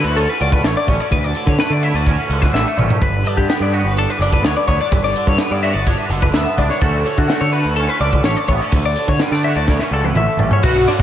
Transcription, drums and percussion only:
0.17 ride
0.41 ride
0.51 kick, snare
0.64 snare, ride
0.88 kick, ride
1.11 kick, ride
1.35 ride
1.47 kick
1.59 snare, ride
1.83 ride
2.06 kick, ride
2.30 ride
2.42 kick, snare
2.55 snare
2.79 mid tom
2.90 floor tom
3.02 kick, ride
3.26 ride
3.37 kick
3.50 snare, ride
3.74 ride
3.97 ride
4.22 ride
4.32 kick
4.45 snare, ride
4.68 kick, ride
4.92 kick, ride
5.04 snare
5.16 ride
5.27 kick
5.38 snare, ride
5.63 ride
5.87 kick, ride
6.10 ride
6.22 kick
6.34 snare, ride
6.58 kick, ride
6.70 snare
6.81 kick, ride
7.06 ride
7.18 kick
7.30 snare, ride
7.53 ride
7.76 ride
8.01 ride
8.13 kick
8.24 snare, ride
8.48 kick, ride
8.72 kick, ride
8.96 ride
9.08 kick
9.20 snare, ride
9.43 ride
9.67 kick, snare
9.79 snare
10.04 high tom
10.15 mid tom
10.39 floor tom
10.51 floor tom
10.63 kick, crash
10.75 snare
10.88 snare, ride

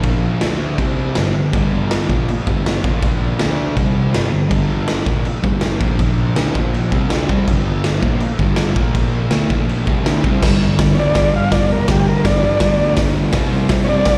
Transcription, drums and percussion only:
0.03 kick, crash
0.41 snare, crash
0.78 kick, crash
1.15 snare, crash
1.53 kick, crash
1.91 snare, crash
2.10 kick
2.29 crash
2.47 kick
2.66 snare, crash
2.84 kick
3.03 kick, crash
3.39 snare, crash
3.77 kick, crash
4.14 snare, crash
4.51 kick, crash
4.88 snare, crash
5.06 kick
5.25 crash
5.44 kick
5.61 snare, crash
5.81 kick
5.99 kick, crash
6.36 snare, crash
6.55 kick
6.74 crash
6.92 kick
7.10 snare, crash
7.29 kick
7.48 kick, crash
7.84 snare, crash
8.03 kick
8.20 crash
8.39 kick
8.56 snare, crash
8.76 kick
8.95 kick, crash
9.31 snare, crash
9.50 kick
9.69 crash
9.87 kick
10.06 snare, crash
10.24 kick
10.43 kick, snare, crash
10.79 kick, snare, open hi-hat
11.15 kick, snare, open hi-hat
11.52 kick, snare, open hi-hat
11.88 kick, snare, open hi-hat
12.25 kick, snare, open hi-hat
12.60 kick, snare, open hi-hat
12.97 kick, snare, open hi-hat
13.33 kick, snare, open hi-hat
13.69 kick, snare, open hi-hat
14.05 kick, snare, open hi-hat

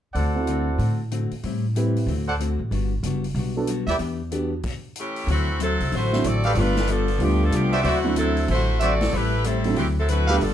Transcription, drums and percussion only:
0.15 open hi-hat
0.47 closed hi-hat
0.79 open hi-hat
1.11 closed hi-hat
1.31 open hi-hat
1.43 open hi-hat
1.76 closed hi-hat
1.96 open hi-hat
2.08 open hi-hat
2.40 closed hi-hat
2.72 open hi-hat
3.03 closed hi-hat
3.24 open hi-hat
3.35 open hi-hat
3.67 closed hi-hat
3.87 snare, open hi-hat
3.99 open hi-hat
4.32 closed hi-hat
4.63 kick, open hi-hat, crash
4.96 closed hi-hat
5.16 open hi-hat
5.28 open hi-hat
5.60 closed hi-hat
5.80 open hi-hat
5.92 open hi-hat
6.13 snare
6.24 closed hi-hat
6.44 open hi-hat
6.55 open hi-hat
6.76 snare
6.87 closed hi-hat
7.08 open hi-hat
7.20 open hi-hat
7.52 closed hi-hat
7.73 open hi-hat
7.84 open hi-hat
8.16 closed hi-hat
8.37 open hi-hat
8.48 open hi-hat
8.80 closed hi-hat
9.01 snare, open hi-hat
9.12 open hi-hat
9.44 closed hi-hat
9.64 open hi-hat
9.76 open hi-hat
10.08 closed hi-hat
10.29 open hi-hat
10.41 open hi-hat

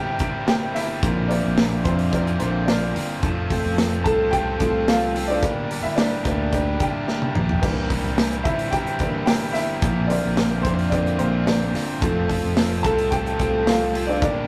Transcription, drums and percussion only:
0.19 kick, hi-hat pedal, open hi-hat
0.48 snare, hi-hat pedal, open hi-hat
0.75 snare, hi-hat pedal, open hi-hat
1.03 kick, hi-hat pedal, open hi-hat
1.30 hi-hat pedal, open hi-hat
1.58 snare, hi-hat pedal, open hi-hat
1.85 kick, hi-hat pedal, open hi-hat
1.99 open hi-hat
2.13 kick, hi-hat pedal, open hi-hat
2.27 hi-hat pedal
2.40 hi-hat pedal, open hi-hat
2.68 snare, hi-hat pedal, open hi-hat
2.96 hi-hat pedal, open hi-hat
3.23 kick, hi-hat pedal, open hi-hat
3.50 kick, hi-hat pedal, open hi-hat
3.65 open hi-hat
3.78 snare, hi-hat pedal, open hi-hat
3.92 hi-hat pedal
4.06 kick, hi-hat pedal, open hi-hat
4.33 kick, hi-hat pedal, open hi-hat
4.60 kick, hi-hat pedal, open hi-hat
4.88 snare, hi-hat pedal, open hi-hat
5.16 hi-hat pedal, open hi-hat
5.43 kick, hi-hat pedal, open hi-hat
5.71 hi-hat pedal, open hi-hat
5.98 snare, hi-hat pedal, open hi-hat
6.25 kick, hi-hat pedal, open hi-hat
6.53 kick, hi-hat pedal, open hi-hat
6.80 kick, hi-hat pedal, open hi-hat
7.08 snare
7.22 high tom
7.35 mid tom
7.49 floor tom
7.63 kick, crash
7.90 kick, hi-hat pedal, open hi-hat
8.04 open hi-hat
8.18 snare, hi-hat pedal, open hi-hat
8.31 hi-hat pedal
8.45 kick, hi-hat pedal, open hi-hat
8.59 open hi-hat
8.73 kick, hi-hat pedal, open hi-hat
8.86 hi-hat pedal
8.99 kick, hi-hat pedal, open hi-hat
9.27 snare, hi-hat pedal, open hi-hat
9.55 snare, hi-hat pedal, open hi-hat
9.82 kick, hi-hat pedal, open hi-hat
10.10 hi-hat pedal, open hi-hat
10.37 snare, hi-hat pedal, open hi-hat
10.65 kick, hi-hat pedal, open hi-hat
10.79 open hi-hat
10.92 kick, hi-hat pedal, open hi-hat
11.06 hi-hat pedal
11.19 hi-hat pedal, open hi-hat
11.47 snare, hi-hat pedal, open hi-hat
11.75 snare, hi-hat pedal, open hi-hat
12.02 kick, hi-hat pedal, open hi-hat
12.29 kick, hi-hat pedal, open hi-hat
12.57 snare, hi-hat pedal, open hi-hat
12.84 kick, hi-hat pedal, open hi-hat
12.98 open hi-hat
13.12 kick, hi-hat pedal, open hi-hat
13.26 hi-hat pedal
13.39 kick, hi-hat pedal, open hi-hat
13.67 snare, hi-hat pedal, open hi-hat
13.95 hi-hat pedal, open hi-hat
14.22 kick, hi-hat pedal, open hi-hat

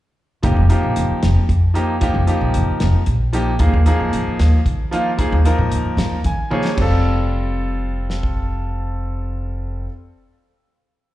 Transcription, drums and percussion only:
0.43 kick, closed hi-hat
0.70 closed hi-hat
0.96 closed hi-hat
1.23 snare, closed hi-hat
1.49 kick, closed hi-hat
1.75 closed hi-hat
2.01 kick, closed hi-hat
2.28 closed hi-hat
2.54 closed hi-hat
2.80 snare, closed hi-hat
3.06 kick, closed hi-hat
3.33 closed hi-hat
3.59 kick, closed hi-hat
3.86 closed hi-hat
4.13 closed hi-hat
4.39 snare, closed hi-hat
4.66 kick, closed hi-hat
4.93 closed hi-hat
5.19 kick, closed hi-hat
5.45 closed hi-hat
5.72 closed hi-hat
5.98 snare, closed hi-hat
6.24 kick, closed hi-hat
6.51 high tom
6.65 snare
6.78 kick, crash
8.10 snare
8.23 kick

